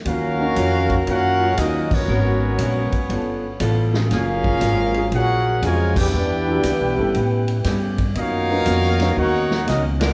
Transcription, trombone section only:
X:1
M:4/4
L:1/8
Q:"Swing" 1/4=118
K:Ebm
V:1 name="Trombone section"
[B,DG]4 [B,DG]2 [G,B,E] [E,G,D]- | [E,G,D]6- [E,G,D] z | [B,DF]4 [B,DG]2 [D,F,A,] [C=D=G]- | [C=D=G]6- [CDG] z |
[^A,F^F]4 [A,^DF]2 [^F,A,D] [=F,_A,=D] |]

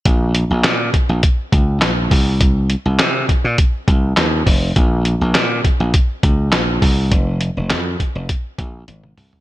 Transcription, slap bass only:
X:1
M:4/4
L:1/16
Q:1/4=102
K:Bbm
V:1 name="Slap bass" clef=bass
B,,,3 B,,, B,,2 z B,,, z2 D,,2 B,,,2 C,,2- | C,,3 C,, C,2 z B,, z2 C,,2 E,,2 F,,,2 | B,,,3 B,,, B,,2 z B,,, z2 D,,2 B,,,2 C,,2 | F,,,3 F,,, F,,2 z F,,, z2 B,,,2 A,,,2 C,,2 |]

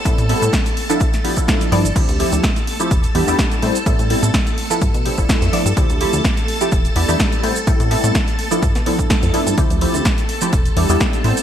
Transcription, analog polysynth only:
X:1
M:4/4
L:1/16
Q:"Swing 16ths" 1/4=126
K:Ddor
V:1 name="Analog polysynth"
[G,B,CEA]2 [G,B,CEA]2 z3 [F,B,DEA] z2 [F,B,DEG] [F,B,DEA]3 [F,B,DEd] z | [F,A,CEG]2 [F,A,CEG]2 z3 [F,A,CEG] z2 [G,B,DEG] [G,B,DEG]3 [G,B,CEc] z | [G,B,CEA]2 [G,B,CEA]2 z3 [F,B,DEA] z2 [F,B,DEG] [F,B,DEA]3 [F,B,DEd] z | [F,A,CEG]2 [F,A,CEG]2 z3 [F,A,CEG] z2 [G,B,DEG] [G,B,DEG]3 [G,B,CEc] z |
[G,B,CEA]2 [G,B,CEA]2 z3 [F,B,DEA] z2 [F,B,DEA]4 [F,B,DEA]2 | [F,A,CEG]2 [F,A,CEG]2 z3 [F,A,CEG] z2 [G,B,DEG] [G,B,DEG]3 [G,B,CEc] z |]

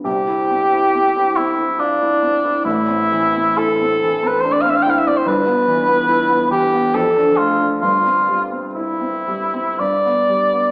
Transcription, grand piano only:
X:1
M:3/4
L:1/16
Q:1/4=69
K:C
V:1 name="Grand piano"
[C,,C,] E C E C E C E F E C E | [A,,,A,,] C E, C E C E, C D C E C | [G,,,G,,] B, E, B, E B, E, B, F,, D A, D | [G,,,G,,] C G, C E C G, C G,, B, G, B, |]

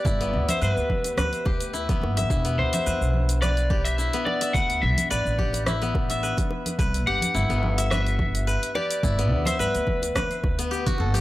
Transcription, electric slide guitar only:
X:1
M:4/4
L:1/16
Q:"Swing 16ths" 1/4=107
K:G
V:1 name="Electric slide guitar"
d3 c B8- B2 z2 | z2 c6 d3 e3 d2 | f2 e2 d4 z8 | z2 f6 e6 d2- |
d3 c B8- B2 z2 |]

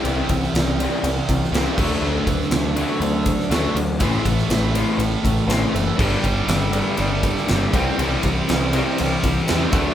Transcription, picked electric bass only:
X:1
M:4/4
L:1/8
Q:1/4=121
K:Clyd
V:1 name="Picked electric bass" clef=bass
C,, C,, C,,2 C,, C,, C,, D,, | D,, D,, D,,2 D,,2 D,, D,, | A,,, A,,, A,,,2 A,,, A,,, A,,, F,,, | G,,, G,,, G,,,2 G,,,2 G,,, C,, |
C,, C,, C,,2 C,, C,, E,, D,, |]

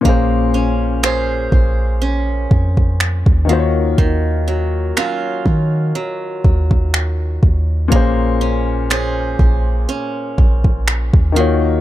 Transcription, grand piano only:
X:1
M:4/4
L:1/8
Q:"Swing 16ths" 1/4=61
K:Bbm
V:1 name="Grand piano"
[B,,B,DAc]6- [B,,B,DAc] [E,B,FGcd]- | [E,B,FGcd]6- [E,B,FGcd] z | [B,,B,DAc]6- [B,,B,DAc] [E,B,FGd] |]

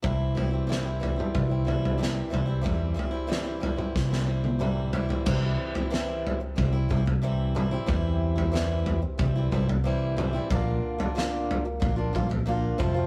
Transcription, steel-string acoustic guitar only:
X:1
M:4/4
L:1/16
Q:1/4=92
K:C
V:1 name="Steel-string acoustic guitar"
[C,E,G,CE]2 [E,G,CE] [G,CE] [C,E,G,CE] [G,CE] [E,G,CE] [G,CE]2 [G,CE] [E,G,CE]2 [C,E,G,CE]2 [E,G,CE] [G,CE] | [C,E,G,CE]2 [E,G,CE] [G,CE] [C,E,G,CE] [G,CE] [E,G,CE] [G,CE]2 [G,CE] [E,G,CE]2 [C,E,G,CE]2 [E,G,CE] [G,CE] | [C,E,G,CE]3 [G,CE] [C,E,G,CE]4 [E,G,CE] [G,CE] [E,G,CE]2 [C,E,G,CE]2 [E,G,CE] [G,CE] | [C,E,G,CE]3 [G,CE] [C,E,G,CE]4 [E,G,CE] [G,CE] [E,G,CE]2 [C,E,G,CE]2 [E,G,CE] [G,CE] |
[_B,,D,_B,DF]3 [B,DF] [B,,D,B,DF]4 [D,B,DF] [B,DF] [D,B,DF]2 [B,,D,B,DF]2 [F,,C,F,A,CF] [F,A,CF] |]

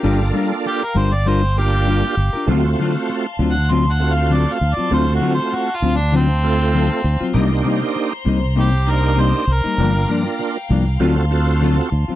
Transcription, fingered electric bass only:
X:1
M:4/4
L:1/16
Q:"Swing 16ths" 1/4=98
K:Gm
V:1 name="Fingered electric bass" clef=bass
G,,,2 z4 G,,,8 G,,, z | D,,2 z4 D,,8 D,, z | D,,2 z4 D,,8 D,, z | C,,2 z4 C,,8 C,, z |
G,,,2 z4 C,,2 D,,6 D,, z |]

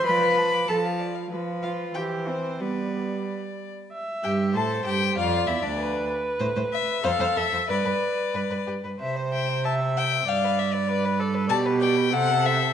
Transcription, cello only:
X:1
M:2/4
L:1/16
Q:1/4=95
K:C
V:1 name="Cello" clef=bass
B4 A2 z2 | z2 F2 G2 C2 | B,4 z4 | z2 G,,2 A,,2 G,,2 |
F,,2 E,, D,,3 z2 | A,, A,, z2 F,, F,, F,, F,, | G,, G,, z2 G,, G,, G,, G,, | C,8 |
G,,8 | [K:G] B,,4 C,4 |]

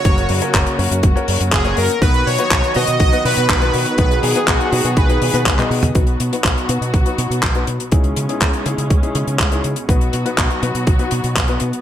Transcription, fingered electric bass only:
X:1
M:4/4
L:1/16
Q:1/4=122
K:B
V:1 name="Fingered electric bass" clef=bass
F,,,2 F,, z F,,, z F,, F,, F,,, z F,, F,, F,,,2 F,, z | B,,,2 B,, z B,,, z B,, B,, B,,, z B,, B,, B,,,2 B,, z | B,,,2 B,, z B,,, z B,, B,, B,,,2 B,, B,, B,,, z B,,2 | B,,,2 B,, z B,,, z B,, B,, B,,, z B,, B,, B,,,2 B,, z |
C,,2 C, z C,, z C, C, C,, z C, C, C,,2 C, z | B,,,2 B,, z B,,, z B,, B,, B,,, z B,, B,, B,,,2 B,, z |]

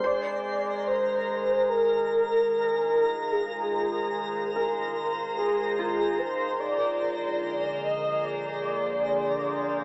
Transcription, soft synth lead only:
X:1
M:4/4
L:1/8
Q:1/4=73
K:Fdor
V:1 name="Soft synth lead"
d2 c2 B4 | A4 z A2 c | d3 e d4 |]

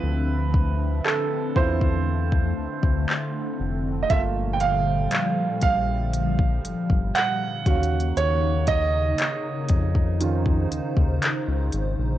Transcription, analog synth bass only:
X:1
M:4/4
L:1/16
Q:1/4=59
K:Eblyd
V:1 name="Analog synth bass" clef=bass
D,,4 z2 =E,,4 D,, D,, z2 F,,,2 | G,,,4 z2 B,,,4 G,,, G,,, z2 E,,2 | E,,4 z2 F,,4 E,, E,, z _D,, _A,,, B,,, |]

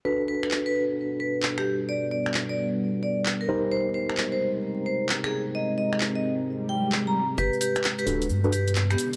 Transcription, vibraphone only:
X:1
M:4/4
L:1/16
Q:"Swing 16ths" 1/4=131
K:G
V:1 name="Vibraphone"
B z B z2 B z4 B z2 G z2 | d z d z2 d z4 d z2 _B z2 | c z c z2 c z4 c z2 _A z2 | _e z e z2 e z4 g z2 _b z2 |
[GB] z [GB] z2 [GB] z4 [GB] z2 [B,G] z2 |]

